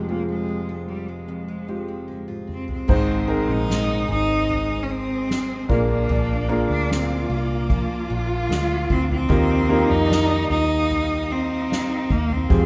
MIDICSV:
0, 0, Header, 1, 8, 480
1, 0, Start_track
1, 0, Key_signature, -4, "major"
1, 0, Tempo, 800000
1, 1736, Time_signature, 4, 2, 24, 8
1, 7595, End_track
2, 0, Start_track
2, 0, Title_t, "String section"
2, 0, Program_c, 0, 48
2, 1735, Note_on_c, 0, 72, 68
2, 1738, Note_on_c, 0, 80, 63
2, 1738, Note_on_c, 0, 87, 88
2, 3399, Note_off_c, 0, 72, 0
2, 3400, Note_off_c, 0, 87, 0
2, 3414, Note_on_c, 0, 70, 74
2, 3415, Note_on_c, 0, 86, 87
2, 5553, Note_off_c, 0, 70, 0
2, 5553, Note_off_c, 0, 80, 0
2, 5554, Note_off_c, 0, 86, 0
2, 5578, Note_on_c, 0, 87, 84
2, 5580, Note_on_c, 0, 77, 73
2, 5583, Note_on_c, 0, 67, 75
2, 7478, Note_off_c, 0, 87, 0
2, 7480, Note_off_c, 0, 67, 0
2, 7503, Note_on_c, 0, 79, 72
2, 7595, Note_off_c, 0, 77, 0
2, 7595, Note_off_c, 0, 79, 0
2, 7595, End_track
3, 0, Start_track
3, 0, Title_t, "Cello section"
3, 0, Program_c, 1, 48
3, 1736, Note_on_c, 1, 56, 98
3, 2672, Note_off_c, 1, 56, 0
3, 2698, Note_on_c, 1, 60, 102
3, 3393, Note_off_c, 1, 60, 0
3, 3417, Note_on_c, 1, 62, 113
3, 4137, Note_off_c, 1, 62, 0
3, 4137, Note_on_c, 1, 65, 101
3, 4612, Note_off_c, 1, 65, 0
3, 4619, Note_on_c, 1, 65, 127
3, 5554, Note_off_c, 1, 65, 0
3, 5577, Note_on_c, 1, 63, 116
3, 6534, Note_off_c, 1, 63, 0
3, 6541, Note_on_c, 1, 63, 114
3, 7475, Note_off_c, 1, 63, 0
3, 7487, Note_on_c, 1, 65, 107
3, 7595, Note_off_c, 1, 65, 0
3, 7595, End_track
4, 0, Start_track
4, 0, Title_t, "Grand piano"
4, 0, Program_c, 2, 0
4, 0, Control_c, 2, 64, 127
4, 0, Note_on_c, 2, 29, 48
4, 0, Note_on_c, 2, 41, 51
4, 0, Note_on_c, 2, 56, 59
4, 0, Note_on_c, 2, 60, 55
4, 0, Note_on_c, 2, 65, 54
4, 0, Note_on_c, 2, 67, 59
4, 51, Note_off_c, 2, 56, 0
4, 51, Note_on_c, 2, 56, 62
4, 56, Note_off_c, 2, 60, 0
4, 56, Note_on_c, 2, 60, 52
4, 58, Note_off_c, 2, 65, 0
4, 58, Note_on_c, 2, 65, 58
4, 63, Note_on_c, 2, 68, 64
4, 966, Note_off_c, 2, 56, 0
4, 968, Note_off_c, 2, 60, 0
4, 969, Note_off_c, 2, 65, 0
4, 972, Note_off_c, 2, 68, 0
4, 1008, Note_on_c, 2, 60, 42
4, 1010, Note_on_c, 2, 56, 49
4, 1014, Note_off_c, 2, 67, 0
4, 1014, Note_on_c, 2, 65, 42
4, 1014, Note_on_c, 2, 67, 52
4, 1696, Note_off_c, 2, 60, 0
4, 1697, Note_off_c, 2, 56, 0
4, 1699, Note_off_c, 2, 65, 0
4, 1699, Note_off_c, 2, 67, 0
4, 1713, Note_off_c, 2, 41, 0
4, 1714, Note_off_c, 2, 29, 0
4, 1729, Note_on_c, 2, 56, 72
4, 1730, Note_on_c, 2, 60, 66
4, 1731, Note_on_c, 2, 44, 67
4, 1732, Note_on_c, 2, 63, 67
4, 1736, Note_on_c, 2, 72, 78
4, 1737, Note_on_c, 2, 68, 66
4, 1745, Control_c, 2, 64, 0
4, 1850, Control_c, 2, 64, 127
4, 1958, Note_off_c, 2, 56, 0
4, 1958, Note_off_c, 2, 60, 0
4, 1960, Note_off_c, 2, 68, 0
4, 1961, Note_off_c, 2, 63, 0
4, 1964, Note_off_c, 2, 72, 0
4, 1967, Note_on_c, 2, 56, 72
4, 1967, Note_on_c, 2, 60, 66
4, 1969, Note_on_c, 2, 68, 73
4, 1970, Note_on_c, 2, 63, 69
4, 1970, Note_on_c, 2, 70, 85
4, 2429, Note_off_c, 2, 44, 0
4, 2884, Note_off_c, 2, 56, 0
4, 2884, Note_off_c, 2, 60, 0
4, 2884, Note_off_c, 2, 68, 0
4, 2885, Note_off_c, 2, 63, 0
4, 2885, Note_off_c, 2, 70, 0
4, 3412, Note_on_c, 2, 58, 70
4, 3415, Note_on_c, 2, 62, 69
4, 3415, Note_on_c, 2, 65, 60
4, 3418, Note_on_c, 2, 46, 60
4, 3418, Note_on_c, 2, 68, 65
4, 3421, Note_on_c, 2, 70, 74
4, 3424, Control_c, 2, 64, 0
4, 3511, Control_c, 2, 64, 127
4, 3870, Note_off_c, 2, 58, 0
4, 3872, Note_off_c, 2, 62, 0
4, 3872, Note_off_c, 2, 65, 0
4, 3873, Note_off_c, 2, 68, 0
4, 3875, Note_off_c, 2, 70, 0
4, 3890, Note_on_c, 2, 58, 72
4, 3893, Note_on_c, 2, 62, 72
4, 3895, Note_on_c, 2, 65, 70
4, 3897, Note_on_c, 2, 68, 68
4, 3898, Note_on_c, 2, 70, 76
4, 4113, Note_off_c, 2, 46, 0
4, 4805, Note_off_c, 2, 58, 0
4, 4806, Note_off_c, 2, 62, 0
4, 4807, Note_off_c, 2, 65, 0
4, 4808, Note_off_c, 2, 68, 0
4, 4809, Note_off_c, 2, 70, 0
4, 5574, Note_on_c, 2, 58, 73
4, 5575, Note_on_c, 2, 63, 71
4, 5576, Note_on_c, 2, 51, 70
4, 5576, Note_on_c, 2, 65, 73
4, 5580, Note_on_c, 2, 70, 76
4, 5581, Note_on_c, 2, 67, 73
4, 5585, Control_c, 2, 64, 0
4, 5686, Control_c, 2, 64, 127
4, 5803, Note_off_c, 2, 58, 0
4, 5803, Note_off_c, 2, 63, 0
4, 5804, Note_off_c, 2, 65, 0
4, 5806, Note_off_c, 2, 70, 0
4, 5807, Note_off_c, 2, 67, 0
4, 5813, Note_on_c, 2, 58, 84
4, 5817, Note_on_c, 2, 63, 74
4, 5820, Note_on_c, 2, 65, 72
4, 5821, Note_on_c, 2, 70, 90
4, 5822, Note_on_c, 2, 67, 71
4, 6272, Note_off_c, 2, 51, 0
4, 6727, Note_off_c, 2, 58, 0
4, 6729, Note_off_c, 2, 63, 0
4, 6730, Note_off_c, 2, 65, 0
4, 6731, Note_off_c, 2, 67, 0
4, 6731, Note_off_c, 2, 70, 0
4, 7494, Note_on_c, 2, 56, 76
4, 7496, Note_on_c, 2, 65, 64
4, 7497, Note_on_c, 2, 60, 66
4, 7502, Note_on_c, 2, 67, 66
4, 7503, Control_c, 2, 64, 0
4, 7503, Note_on_c, 2, 68, 87
4, 7595, Note_off_c, 2, 56, 0
4, 7595, Note_off_c, 2, 60, 0
4, 7595, Note_off_c, 2, 65, 0
4, 7595, Note_off_c, 2, 67, 0
4, 7595, Note_off_c, 2, 68, 0
4, 7595, End_track
5, 0, Start_track
5, 0, Title_t, "Cello"
5, 0, Program_c, 3, 42
5, 0, Note_on_c, 3, 56, 72
5, 64, Note_on_c, 3, 58, 84
5, 73, Note_off_c, 3, 56, 0
5, 173, Note_off_c, 3, 58, 0
5, 176, Note_on_c, 3, 56, 74
5, 512, Note_off_c, 3, 56, 0
5, 530, Note_on_c, 3, 55, 64
5, 655, Note_on_c, 3, 56, 61
5, 664, Note_off_c, 3, 55, 0
5, 1376, Note_off_c, 3, 56, 0
5, 1521, Note_on_c, 3, 60, 72
5, 1621, Note_off_c, 3, 60, 0
5, 1635, Note_on_c, 3, 60, 81
5, 2109, Note_on_c, 3, 63, 106
5, 2118, Note_off_c, 3, 60, 0
5, 2463, Note_off_c, 3, 63, 0
5, 2467, Note_on_c, 3, 63, 113
5, 2898, Note_on_c, 3, 61, 67
5, 2907, Note_off_c, 3, 63, 0
5, 2941, Note_on_c, 3, 60, 92
5, 2950, Note_off_c, 3, 61, 0
5, 3419, Note_off_c, 3, 60, 0
5, 3428, Note_on_c, 3, 58, 81
5, 3534, Note_off_c, 3, 58, 0
5, 3544, Note_on_c, 3, 58, 88
5, 3996, Note_off_c, 3, 58, 0
5, 4016, Note_on_c, 3, 62, 88
5, 4140, Note_on_c, 3, 60, 87
5, 4149, Note_off_c, 3, 62, 0
5, 4378, Note_off_c, 3, 60, 0
5, 4387, Note_on_c, 3, 58, 87
5, 5078, Note_off_c, 3, 58, 0
5, 5344, Note_on_c, 3, 60, 100
5, 5452, Note_off_c, 3, 60, 0
5, 5471, Note_on_c, 3, 60, 113
5, 5944, Note_on_c, 3, 63, 121
5, 5953, Note_off_c, 3, 60, 0
5, 6300, Note_off_c, 3, 63, 0
5, 6304, Note_on_c, 3, 63, 117
5, 6792, Note_on_c, 3, 60, 93
5, 6801, Note_off_c, 3, 63, 0
5, 7269, Note_on_c, 3, 58, 102
5, 7278, Note_off_c, 3, 60, 0
5, 7396, Note_on_c, 3, 60, 95
5, 7405, Note_off_c, 3, 58, 0
5, 7595, Note_off_c, 3, 60, 0
5, 7595, End_track
6, 0, Start_track
6, 0, Title_t, "Steel-string acoustic guitar"
6, 0, Program_c, 4, 25
6, 0, Note_on_c, 4, 41, 61
6, 0, Note_on_c, 4, 56, 43
6, 51, Note_on_c, 4, 65, 51
6, 170, Note_on_c, 4, 60, 41
6, 288, Note_off_c, 4, 56, 0
6, 290, Note_on_c, 4, 56, 41
6, 405, Note_off_c, 4, 65, 0
6, 412, Note_on_c, 4, 65, 52
6, 527, Note_off_c, 4, 60, 0
6, 530, Note_on_c, 4, 60, 44
6, 648, Note_off_c, 4, 56, 0
6, 650, Note_on_c, 4, 56, 37
6, 763, Note_off_c, 4, 41, 0
6, 770, Note_on_c, 4, 41, 58
6, 887, Note_off_c, 4, 56, 0
6, 889, Note_on_c, 4, 56, 48
6, 1002, Note_off_c, 4, 65, 0
6, 1010, Note_on_c, 4, 65, 46
6, 1126, Note_off_c, 4, 60, 0
6, 1129, Note_on_c, 4, 60, 44
6, 1244, Note_off_c, 4, 56, 0
6, 1247, Note_on_c, 4, 56, 41
6, 1359, Note_off_c, 4, 65, 0
6, 1367, Note_on_c, 4, 65, 50
6, 1481, Note_off_c, 4, 60, 0
6, 1483, Note_on_c, 4, 60, 44
6, 1604, Note_off_c, 4, 56, 0
6, 1606, Note_on_c, 4, 56, 43
6, 1724, Note_off_c, 4, 41, 0
6, 1726, Note_on_c, 4, 44, 79
6, 1779, Note_off_c, 4, 65, 0
6, 1963, Note_off_c, 4, 56, 0
6, 1966, Note_off_c, 4, 60, 0
6, 1966, Note_on_c, 4, 60, 55
6, 2207, Note_on_c, 4, 63, 60
6, 2447, Note_on_c, 4, 68, 70
6, 2693, Note_on_c, 4, 56, 58
6, 2925, Note_off_c, 4, 63, 0
6, 2932, Note_on_c, 4, 63, 63
6, 3165, Note_off_c, 4, 60, 0
6, 3173, Note_on_c, 4, 60, 49
6, 3411, Note_off_c, 4, 44, 0
6, 3414, Note_on_c, 4, 46, 68
6, 3462, Note_off_c, 4, 60, 0
6, 3462, Note_off_c, 4, 63, 0
6, 3647, Note_off_c, 4, 46, 0
6, 3654, Note_on_c, 4, 46, 81
6, 3672, Note_off_c, 4, 56, 0
6, 3672, Note_off_c, 4, 68, 0
6, 3895, Note_on_c, 4, 56, 64
6, 4136, Note_on_c, 4, 62, 54
6, 4378, Note_on_c, 4, 65, 63
6, 4620, Note_on_c, 4, 53, 71
6, 4850, Note_off_c, 4, 62, 0
6, 4858, Note_on_c, 4, 62, 62
6, 5091, Note_off_c, 4, 56, 0
6, 5098, Note_on_c, 4, 56, 61
6, 5332, Note_off_c, 4, 62, 0
6, 5339, Note_on_c, 4, 62, 58
6, 5572, Note_on_c, 4, 51, 77
6, 5575, Note_off_c, 4, 46, 0
6, 5625, Note_off_c, 4, 56, 0
6, 5626, Note_off_c, 4, 62, 0
6, 5816, Note_on_c, 4, 58, 61
6, 6052, Note_on_c, 4, 63, 63
6, 6070, Note_off_c, 4, 53, 0
6, 6070, Note_off_c, 4, 65, 0
6, 6298, Note_on_c, 4, 65, 65
6, 6541, Note_on_c, 4, 55, 72
6, 6772, Note_off_c, 4, 63, 0
6, 6779, Note_on_c, 4, 63, 63
6, 7011, Note_off_c, 4, 58, 0
6, 7018, Note_on_c, 4, 58, 55
6, 7249, Note_off_c, 4, 63, 0
6, 7256, Note_on_c, 4, 63, 59
6, 7494, Note_off_c, 4, 51, 0
6, 7501, Note_on_c, 4, 41, 83
6, 7544, Note_off_c, 4, 63, 0
6, 7545, Note_off_c, 4, 58, 0
6, 7595, Note_off_c, 4, 41, 0
6, 7595, Note_off_c, 4, 55, 0
6, 7595, Note_off_c, 4, 65, 0
6, 7595, End_track
7, 0, Start_track
7, 0, Title_t, "Fingered electric bass"
7, 0, Program_c, 5, 33
7, 1736, Note_on_c, 5, 32, 112
7, 2072, Note_off_c, 5, 32, 0
7, 2094, Note_on_c, 5, 34, 77
7, 2431, Note_off_c, 5, 34, 0
7, 2452, Note_on_c, 5, 32, 92
7, 3390, Note_off_c, 5, 32, 0
7, 3418, Note_on_c, 5, 34, 97
7, 3641, Note_off_c, 5, 34, 0
7, 3662, Note_on_c, 5, 34, 107
7, 3995, Note_off_c, 5, 34, 0
7, 4018, Note_on_c, 5, 38, 89
7, 4353, Note_off_c, 5, 38, 0
7, 4376, Note_on_c, 5, 36, 88
7, 4712, Note_off_c, 5, 36, 0
7, 4863, Note_on_c, 5, 34, 77
7, 5083, Note_off_c, 5, 34, 0
7, 5095, Note_on_c, 5, 38, 78
7, 5319, Note_off_c, 5, 38, 0
7, 5342, Note_on_c, 5, 38, 92
7, 5563, Note_off_c, 5, 38, 0
7, 5580, Note_on_c, 5, 39, 110
7, 5914, Note_off_c, 5, 39, 0
7, 5940, Note_on_c, 5, 41, 85
7, 6274, Note_off_c, 5, 41, 0
7, 6300, Note_on_c, 5, 39, 78
7, 7234, Note_off_c, 5, 39, 0
7, 7263, Note_on_c, 5, 39, 89
7, 7483, Note_off_c, 5, 39, 0
7, 7498, Note_on_c, 5, 41, 119
7, 7595, Note_off_c, 5, 41, 0
7, 7595, End_track
8, 0, Start_track
8, 0, Title_t, "Drums"
8, 1253, Note_on_c, 9, 48, 44
8, 1313, Note_off_c, 9, 48, 0
8, 1375, Note_on_c, 9, 47, 41
8, 1435, Note_off_c, 9, 47, 0
8, 1492, Note_on_c, 9, 45, 67
8, 1552, Note_off_c, 9, 45, 0
8, 1613, Note_on_c, 9, 43, 74
8, 1673, Note_off_c, 9, 43, 0
8, 1734, Note_on_c, 9, 36, 109
8, 1734, Note_on_c, 9, 43, 123
8, 1734, Note_on_c, 9, 49, 106
8, 1794, Note_off_c, 9, 36, 0
8, 1794, Note_off_c, 9, 43, 0
8, 1794, Note_off_c, 9, 49, 0
8, 2221, Note_on_c, 9, 38, 127
8, 2281, Note_off_c, 9, 38, 0
8, 2456, Note_on_c, 9, 43, 57
8, 2516, Note_off_c, 9, 43, 0
8, 2700, Note_on_c, 9, 43, 70
8, 2760, Note_off_c, 9, 43, 0
8, 3184, Note_on_c, 9, 38, 104
8, 3244, Note_off_c, 9, 38, 0
8, 3418, Note_on_c, 9, 36, 104
8, 3478, Note_off_c, 9, 36, 0
8, 3539, Note_on_c, 9, 43, 63
8, 3599, Note_off_c, 9, 43, 0
8, 3657, Note_on_c, 9, 43, 108
8, 3717, Note_off_c, 9, 43, 0
8, 4148, Note_on_c, 9, 38, 119
8, 4208, Note_off_c, 9, 38, 0
8, 4379, Note_on_c, 9, 43, 64
8, 4439, Note_off_c, 9, 43, 0
8, 4619, Note_on_c, 9, 43, 68
8, 4620, Note_on_c, 9, 36, 96
8, 4679, Note_off_c, 9, 43, 0
8, 4680, Note_off_c, 9, 36, 0
8, 5106, Note_on_c, 9, 38, 104
8, 5166, Note_off_c, 9, 38, 0
8, 5341, Note_on_c, 9, 36, 99
8, 5401, Note_off_c, 9, 36, 0
8, 5462, Note_on_c, 9, 43, 67
8, 5522, Note_off_c, 9, 43, 0
8, 5576, Note_on_c, 9, 43, 113
8, 5579, Note_on_c, 9, 36, 116
8, 5636, Note_off_c, 9, 43, 0
8, 5639, Note_off_c, 9, 36, 0
8, 5941, Note_on_c, 9, 43, 66
8, 6001, Note_off_c, 9, 43, 0
8, 6070, Note_on_c, 9, 38, 124
8, 6130, Note_off_c, 9, 38, 0
8, 6305, Note_on_c, 9, 43, 57
8, 6365, Note_off_c, 9, 43, 0
8, 6545, Note_on_c, 9, 43, 63
8, 6605, Note_off_c, 9, 43, 0
8, 7032, Note_on_c, 9, 38, 104
8, 7092, Note_off_c, 9, 38, 0
8, 7263, Note_on_c, 9, 36, 101
8, 7323, Note_off_c, 9, 36, 0
8, 7385, Note_on_c, 9, 43, 67
8, 7445, Note_off_c, 9, 43, 0
8, 7501, Note_on_c, 9, 36, 110
8, 7501, Note_on_c, 9, 43, 113
8, 7561, Note_off_c, 9, 36, 0
8, 7561, Note_off_c, 9, 43, 0
8, 7595, End_track
0, 0, End_of_file